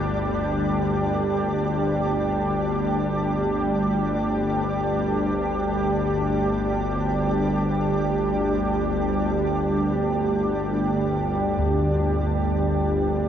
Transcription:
0.00 13.29 G1 medium
0.00 13.29 D2 medium
0.00 4.30 G3 medium
0.00 13.29 G3 medium
0.00 13.29 D4 medium
0.00 13.29 G4 medium
0.00 13.29 D5 medium
11.58 13.29 D2 medium

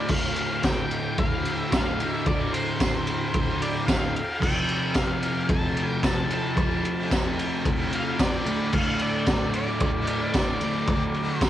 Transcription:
0.00 1.70 D2 loud
0.00 1.71 A2 loud
0.00 1.73 D3 loud
0.08 0.67 F5 loud
0.08 kick loud
0.08 crash loud
0.36 ride medium
0.63 1.15 G5 loud
0.63 kick loud
0.63 snare loud
0.63 ride medium
0.63 tambourine medium
0.91 ride medium
1.18 1.59 F5 loud
1.18 kick loud
1.18 ride loud
1.45 ride medium
1.59 1.70 E5 loud
1.71 1.98 D2 medium
1.71 1.99 A2 medium
1.71 2.12 F5 loud
1.71 kick loud
1.71 snare loud
1.71 ride loud
1.71 tambourine loud
1.77 2.00 D3 medium
1.99 3.86 D2 medium
1.99 3.88 A2 medium
1.99 ride medium
2.04 3.89 D3 loud
2.12 2.26 E5 loud
2.26 2.52 D5 loud
2.26 kick loud
2.26 ride loud
2.53 3.64 C5 medium
2.53 ride medium
2.80 kick loud
2.80 snare loud
2.80 ride loud
2.80 tambourine loud
3.07 ride medium
3.34 kick loud
3.34 ride loud
3.62 3.86 D5 medium
3.62 ride medium
3.87 4.13 D2 medium
3.87 4.14 A2 medium
3.87 4.43 F5 loud
3.87 kick loud
3.87 snare loud
3.87 ride loud
3.87 tambourine loud
3.92 4.15 D3 medium
4.16 ride medium
4.41 6.29 F2 medium
4.41 6.30 C3 medium
4.41 4.97 G5 loud
4.41 kick loud
4.41 crash loud
4.46 6.29 F3 loud
4.68 ride medium
4.94 5.51 F5 loud
4.94 kick loud
4.94 snare loud
4.94 ride loud
4.94 tambourine loud
5.23 ride medium
5.49 6.00 A5 loud
5.49 kick loud
5.49 ride loud
5.77 ride medium
6.03 6.30 A5 loud
6.03 kick loud
6.03 snare loud
6.03 ride loud
6.03 tambourine loud
6.29 6.56 C3 medium
6.29 6.61 F3 medium
6.29 ride medium
6.33 6.55 F2 medium
6.33 7.98 A5 loud
6.56 8.44 F2 loud
6.56 8.45 C3 loud
6.56 kick loud
6.56 ride loud
6.61 8.50 F3 loud
6.85 ride medium
7.11 kick loud
7.11 snare loud
7.11 ride loud
7.11 tambourine loud
7.39 ride medium
7.65 kick loud
7.65 ride loud
7.93 8.21 F5 loud
7.93 ride medium
8.19 8.74 D5 loud
8.19 kick loud
8.19 snare loud
8.19 ride loud
8.19 tambourine loud
8.45 10.32 D2 loud
8.45 10.34 A2 loud
8.45 ride medium
8.50 10.35 D3 loud
8.73 9.01 F5 loud
8.73 kick loud
8.73 crash loud
8.99 9.54 D5 loud
8.99 ride medium
9.26 kick loud
9.26 snare loud
9.26 ride medium
9.26 tambourine medium
9.53 11.40 D5 medium
9.53 ride medium
9.80 kick loud
9.80 ride loud
10.07 ride medium
10.33 10.59 D2 medium
10.33 10.61 A2 medium
10.33 kick loud
10.33 snare loud
10.33 ride medium
10.33 tambourine medium
10.38 10.61 D3 medium
10.60 11.50 D2 loud
10.60 11.50 A2 loud
10.60 ride medium
10.64 11.50 D3 loud
10.87 kick loud
10.87 ride loud
11.14 ride medium
11.40 11.50 C5 medium
11.40 kick loud
11.40 snare loud
11.40 ride loud
11.40 tambourine medium

